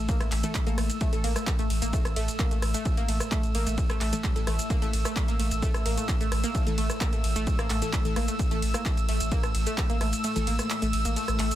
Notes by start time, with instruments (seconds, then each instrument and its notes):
Already playing: ambient pad A2 A3, analog synth pad E6
0.09 synth arpeggio sound A#3, kick, closed hi-hat, ride, shaker
0.20 sub bass A1, synth arpeggio sound A3, cross-stick, closed hi-hat, ride, shaker
0.32 sub bass A1, clap, open hi-hat, ride
0.43 synth stab E3 A3 A4, synth arpeggio sound A3, closed hi-hat, ride, shaker
0.55 kick, clap, closed hi-hat, ride, shaker
0.67 sub bass A1, synth stab E3 A3 A4, synth arpeggio sound A#3, closed hi-hat, ride, shaker
0.78 sub bass A1, synth arpeggio sound A3, cross-stick, open hi-hat, ride
0.90 closed hi-hat, ride, shaker
1.01 synth arpeggio sound A3, kick, closed hi-hat, ride, shaker
1.13 sub bass A1, synth stab E3 A3 A4, closed hi-hat, ride, shaker
1.24 sub bass A1, synth arpeggio sound A#3, open hi-hat, ride
1.36 synth arpeggio sound A3, cross-stick, closed hi-hat, ride, shaker
1.47 kick, clap, closed hi-hat, ride, shaker
1.59 sub bass A1, synth arpeggio sound A3, closed hi-hat, ride, shaker
1.70 sub bass A1, open hi-hat, ride
1.82 sub bass A1, synth arpeggio sound A#3, closed hi-hat, ride, shaker
1.93 synth arpeggio sound A3, kick, closed hi-hat, ride, shaker
2.05 sub bass A1, cross-stick, closed hi-hat, ride, shaker
2.16 sub bass A1, synth arpeggio sound A3, open hi-hat, ride
2.28 closed hi-hat, ride, shaker
2.39 synth arpeggio sound A#3, kick, clap, closed hi-hat, ride, shaker
2.51 sub bass A1, synth arpeggio sound A3, closed hi-hat, ride, shaker
2.62 sub bass A1, cross-stick, open hi-hat, ride
2.74 synth arpeggio sound A3, closed hi-hat, ride, shaker
2.85 kick, closed hi-hat, ride, shaker
2.97 sub bass A1, synth arpeggio sound A#3, closed hi-hat, ride, shaker
3.08 sub bass A1, synth arpeggio sound A3, open hi-hat, ride
3.20 cross-stick, closed hi-hat, ride, shaker
3.32 synth arpeggio sound A3, kick, clap, closed hi-hat, ride, shaker
3.43 sub bass A1, closed hi-hat, ride, shaker
3.55 sub bass A1, synth arpeggio sound A#3, open hi-hat, ride
3.67 sub bass A1, synth arpeggio sound A3, closed hi-hat, ride, shaker
3.78 kick, closed hi-hat, ride, shaker
3.90 sub bass A1, synth arpeggio sound A3, cross-stick, closed hi-hat, ride, shaker
4.01 sub bass A1, synth arpeggio sound A3, clap, open hi-hat, ride
4.13 synth stab E3 A3 A4, synth arpeggio sound A3, closed hi-hat, ride, shaker
4.24 synth arpeggio sound G3, kick, clap, closed hi-hat, ride, shaker
4.36 sub bass A1, synth stab E3 A3 A4, closed hi-hat, ride, shaker
4.47 sub bass A1, synth arpeggio sound A3, cross-stick, open hi-hat, ride
4.59 closed hi-hat, ride, shaker
4.70 synth arpeggio sound A#3, kick, closed hi-hat, ride, shaker
4.82 sub bass A1, synth stab E3 A3 A4, synth arpeggio sound A3, closed hi-hat, ride, shaker
4.93 sub bass A1, open hi-hat, ride
5.05 synth arpeggio sound A3, cross-stick, closed hi-hat, ride, shaker
5.16 kick, clap, closed hi-hat, ride, shaker
5.28 sub bass A1, synth arpeggio sound A#3, closed hi-hat, ride, shaker
5.39 sub bass A1, synth arpeggio sound A3, open hi-hat, ride
5.51 sub bass A1, closed hi-hat, ride, shaker
5.62 synth arpeggio sound A3, kick, closed hi-hat, ride, shaker
5.74 sub bass A1, cross-stick, closed hi-hat, ride, shaker
5.86 sub bass A1, synth arpeggio sound A#3, open hi-hat, ride
5.97 synth arpeggio sound A3, closed hi-hat, ride, shaker
6.09 kick, clap, closed hi-hat, ride, shaker
6.20 sub bass A1, synth arpeggio sound A3, closed hi-hat, ride, shaker
6.32 sub bass A1, cross-stick, open hi-hat, ride
6.44 synth arpeggio sound A#3, closed hi-hat, ride, shaker
6.55 synth arpeggio sound A3, kick, closed hi-hat, ride, shaker
6.67 sub bass A1, synth stab E3 A3 A4, closed hi-hat, ride, shaker
6.78 sub bass A1, synth arpeggio sound A3, open hi-hat, ride
6.90 cross-stick, closed hi-hat, ride, shaker
7.01 synth arpeggio sound A#3, kick, clap, closed hi-hat, ride, shaker
7.13 sub bass A1, synth arpeggio sound A3, closed hi-hat, ride, shaker
7.24 sub bass A1, open hi-hat, ride
7.36 sub bass A1, synth arpeggio sound A3, closed hi-hat, ride, shaker
7.47 kick, closed hi-hat, ride, shaker
7.59 sub bass A1, synth arpeggio sound A#3, cross-stick, closed hi-hat, ride, shaker
7.70 sub bass A1, synth arpeggio sound A3, clap, open hi-hat, ride
7.82 synth stab E3 A3 A4, closed hi-hat, ride, shaker
7.93 synth arpeggio sound A3, kick, clap, closed hi-hat, ride, shaker
8.05 sub bass A1, synth stab E3 A3 A4, closed hi-hat, ride, shaker
8.16 sub bass A1, synth arpeggio sound A#3, cross-stick, open hi-hat, ride
8.28 synth arpeggio sound A3, closed hi-hat, ride, shaker
8.39 kick, closed hi-hat, ride, shaker
8.51 sub bass A1, synth stab E3 A3 A4, synth arpeggio sound A3, closed hi-hat, ride, shaker
8.62 sub bass A1, open hi-hat, ride
8.74 synth arpeggio sound A#3, cross-stick, closed hi-hat, ride, shaker
8.86 synth arpeggio sound A3, kick, clap, closed hi-hat, ride, shaker
8.97 sub bass A1, closed hi-hat, ride, shaker
9.09 sub bass A1, synth arpeggio sound A3, open hi-hat, ride
9.20 sub bass A1, closed hi-hat, ride, shaker
9.32 synth arpeggio sound A#3, kick, closed hi-hat, ride, shaker
9.43 sub bass A1, synth arpeggio sound A3, cross-stick, closed hi-hat, ride, shaker
9.55 sub bass A1, open hi-hat, ride
9.67 synth arpeggio sound A3, closed hi-hat, ride, shaker
9.78 kick, clap, closed hi-hat, ride, shaker
9.90 sub bass A1, synth arpeggio sound A#3, closed hi-hat, ride, shaker
10.01 sub bass A1, synth arpeggio sound A3, cross-stick, open hi-hat, ride
10.13 closed hi-hat, ride, shaker
10.24 synth arpeggio sound A3, closed hi-hat, ride, shaker
10.36 sub bass A1, synth stab E3 A3 A4, closed hi-hat, ride, shaker
10.47 sub bass A1, synth arpeggio sound A#3, open hi-hat, ride
10.59 synth arpeggio sound A3, cross-stick, closed hi-hat, ride, shaker
10.70 clap, closed hi-hat, ride, shaker
10.82 sub bass A1, synth arpeggio sound A3, closed hi-hat, ride, shaker
10.93 sub bass A1, open hi-hat, ride
11.05 sub bass A1, synth arpeggio sound A#3, closed hi-hat, ride, shaker
11.16 synth arpeggio sound A3, closed hi-hat, ride, swell, shaker
11.28 sub bass A1, cross-stick, closed hi-hat, ride, shaker
11.39 sub bass A1, synth arpeggio sound A3, clap, open hi-hat, ride
11.51 closed hi-hat, ride, shaker